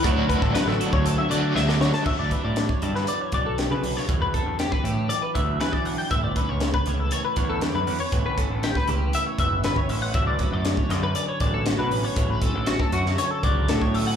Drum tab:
CC |----------------|x---------------|----------------|----------------|
HH |x-x-x-x-x-x-----|--x-x-x-x-x-x-o-|x-x-x-x-x-x-x-o-|x-x-x-x-x-x-x-o-|
SD |----oo------oooo|----o--o----o--o|----o-------o---|----o-------o---|
BD |o-oo---o--------|o-o--o----o-----|o-o--o----o--o--|o-o--o----o-----|

CC |----------------|----------------|----------------|
HH |x-x-x-x-x-x-x-o-|x-x-x-x-x-x-x-o-|x-x-x-x-x-x-x-o-|
SD |----oo------o---|----o-o-----o---|----o--o----o---|
BD |o-o--o----o--o--|o-o--o----o-----|o-o--o----o--o--|